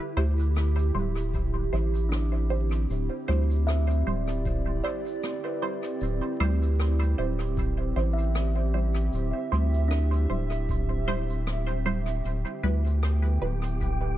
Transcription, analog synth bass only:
0.17 0.92 D2 loud
0.95 1.70 D1 medium
1.73 2.87 A1 medium
2.90 3.09 D1 medium
3.29 4.04 D2 medium
4.07 4.82 D1 medium
6.02 6.21 D1 medium
6.41 7.15 D2 loud
7.19 7.93 D1 medium
7.96 9.10 A1 medium
9.13 9.33 D1 loud
9.52 10.27 D2 loud
10.30 10.69 D1 medium
10.69 12.22 D1 loud
12.25 12.45 D1 medium
12.64 13.38 D2 loud
13.42 14.17 D1 medium

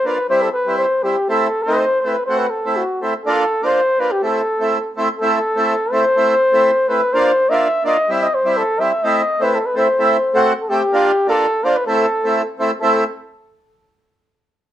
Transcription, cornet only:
0.06 0.29 B4 loud
0.30 0.43 C5 loud
0.42 0.52 A4 medium
0.53 0.77 B4 loud
0.78 1.05 C5 medium
1.04 1.29 G4 medium
1.30 1.65 A4 loud
1.63 2.02 C5 loud
2.01 2.25 B4 medium
2.26 2.40 C5 medium
2.38 2.51 B4 medium
2.50 2.78 A4 medium
2.77 3.01 F#4 medium
3.26 3.66 A4 loud
3.65 4.02 C5 loud
4.00 4.13 B4 loud
4.12 4.23 G4 medium
4.24 4.92 A4 loud
5.19 5.94 A4 loud
5.92 6.90 C5 loud
6.88 7.15 B4 loud
7.13 7.51 C5 loud
7.50 7.85 E5 loud
7.86 8.13 D#5 loud
8.12 8.24 E5 loud
8.23 8.36 D#5 loud
8.35 8.59 C5 medium
8.58 8.82 A4 loud
8.81 9.06 E5 medium
9.04 9.44 D#5 loud
9.43 9.56 B4 medium
9.55 9.67 A4 medium
9.66 9.79 B4 medium
9.78 10.48 C5 medium
10.61 10.71 A4 medium
10.69 11.29 G4 loud
11.29 11.66 A4 loud
11.64 11.77 C5 loud
11.76 11.86 B4 medium
11.87 12.54 A4 loud
12.80 13.03 A4 medium

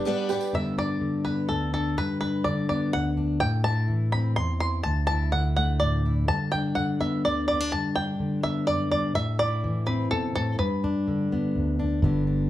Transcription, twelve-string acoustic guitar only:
0.05 0.29 G3 medium
0.05 0.30 B3 medium
0.05 0.30 D4 medium
0.05 0.29 B4 medium
0.30 0.55 G3 soft
0.30 0.55 B3 medium
0.30 0.54 D4 medium
0.30 0.54 B4 medium

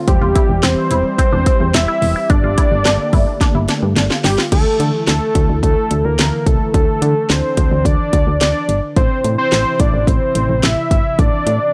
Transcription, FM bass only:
0.08 0.20 E1 loud
0.21 0.34 E1 loud
0.49 0.62 E1 medium
0.63 0.76 E1 loud
0.91 1.03 E1 loud
1.33 1.45 E1 loud
1.60 1.73 E2 loud
1.74 1.87 E1 loud
2.02 2.14 E1 loud
2.30 2.42 G1 loud
2.44 2.56 G1 loud
2.72 2.84 G1 loud
2.85 2.98 G1 loud
3.13 3.25 G1 loud
3.55 3.67 G1 medium
3.83 3.95 G2 medium
3.96 4.09 G1 loud
4.24 4.37 G1 loud
4.52 4.64 D2 loud
4.80 4.92 D3 medium
5.08 5.20 D2 loud
5.35 5.48 D2 loud
5.49 5.62 D2 loud
5.63 5.75 D2 loud
5.91 6.03 D2 loud
6.05 6.17 D2 medium
6.19 6.31 D2 loud
6.47 6.59 C2 medium
6.74 6.87 D2 loud
7.02 7.14 D3 loud
7.30 7.42 D2 loud
7.57 7.70 D2 loud
7.71 7.84 D2 medium
7.85 7.98 D2 loud
8.13 8.26 D2 loud
8.27 8.39 D2 loud
8.41 8.53 D2 loud
8.69 8.81 G1 loud
8.96 9.09 A1 loud
9.24 9.37 A2 medium
9.52 9.65 A1 loud
9.80 9.92 A1 loud
9.94 10.06 A1 medium
10.07 10.20 A1 loud
10.35 10.48 A1 loud
10.49 10.62 A1 medium
10.63 10.76 A1 loud
10.91 11.03 G1 medium
11.19 11.31 A1 loud
11.47 11.59 A2 loud

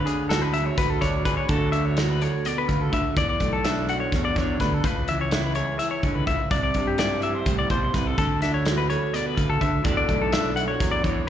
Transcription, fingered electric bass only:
0.30 0.69 D2 medium
0.78 1.36 D2 medium
1.49 2.27 D2 medium
2.69 2.88 D2 medium
2.92 3.02 D2 medium
3.16 3.36 E2 medium
3.40 3.98 B1 medium
4.12 4.32 E2 medium
4.36 4.55 E2 loud
4.60 4.79 D2 medium
4.84 5.61 C#2 loud
6.03 6.22 C#2 medium
6.27 6.37 C#2 medium
6.51 6.70 C2 medium
6.75 7.33 G2 medium
7.46 7.65 C2 medium
7.70 7.89 C2 medium
7.94 8.13 C2 medium
8.18 8.95 D2 medium
9.37 9.57 D2 medium
9.61 9.71 D2 medium
9.85 10.04 E2 medium
10.09 10.67 B1 medium
10.80 11.00 E2 medium
11.04 11.24 E2 loud

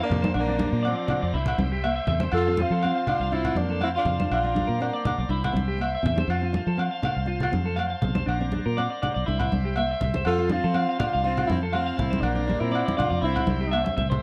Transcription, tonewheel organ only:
0.00 0.33 C5 medium
0.00 0.33 F5 medium
0.00 0.33 A5 medium
0.38 12.23 C5 medium
0.38 1.35 D5 soft
0.38 1.35 A#5 medium
1.35 2.33 E5 medium
1.35 2.34 G5 medium
2.33 4.29 F5 medium
2.33 4.30 A5 medium
4.32 5.30 D5 soft
4.32 5.30 A#5 medium
5.29 6.28 E5 medium
5.29 6.28 G5 medium
6.29 8.26 F5 medium
6.29 8.26 A5 medium
8.28 9.26 D5 soft
8.28 9.27 A#5 medium
9.27 10.25 E5 medium
9.27 10.25 G5 medium
10.27 12.23 F5 medium
10.27 12.24 A5 medium
12.25 14.21 C5 medium
12.25 13.23 D5 medium
12.25 13.23 A#5 medium
13.28 14.22 E5 medium
13.28 14.22 G5 medium

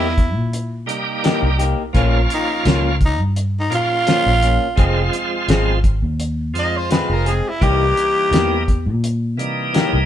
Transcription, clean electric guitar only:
1.24 1.46 E3 medium
1.24 1.47 A#3 medium
1.24 1.47 D#4 medium
1.24 1.47 G4 medium
1.59 1.83 A#3 soft
1.59 1.82 D#4 medium
1.59 1.82 G4 medium
1.95 2.17 F3 medium
1.95 2.18 A#3 medium
1.95 2.18 C#4 medium
1.95 2.18 F4 medium
2.65 2.88 F3 medium
2.65 2.88 A#3 medium
2.65 2.89 C#4 medium
2.65 2.89 F4 medium
4.07 4.30 F3 medium
4.07 4.30 A#3 medium
4.07 4.30 C#4 medium
4.07 4.30 F4 medium
4.42 4.66 A#3 soft
4.42 4.65 C#4 soft
4.42 4.65 F4 soft
4.78 5.00 F3 medium
4.78 5.01 G#3 medium
4.78 5.01 C4 medium
4.78 5.01 G#4 medium
5.49 5.71 F3 medium
5.49 5.72 G#3 medium
5.49 5.72 C4 loud
5.49 5.72 G#4 medium
6.90 7.13 F3 medium
6.90 7.13 G#3 medium
6.90 7.14 C4 medium
6.90 7.14 G#4 medium
7.26 7.49 G#3 soft
7.26 7.49 C4 soft
7.26 7.48 G#4 medium
7.61 7.84 E3 medium
7.61 7.84 A#3 medium
7.61 7.84 D#4 medium
7.61 7.85 G4 medium
8.32 8.55 E3 medium
8.32 8.55 A#3 medium
8.32 8.55 D#4 medium
8.32 8.55 G4 medium
9.74 9.96 E3 medium
9.74 9.96 A#3 medium
9.74 9.97 D#4 medium
9.74 9.97 G4 medium

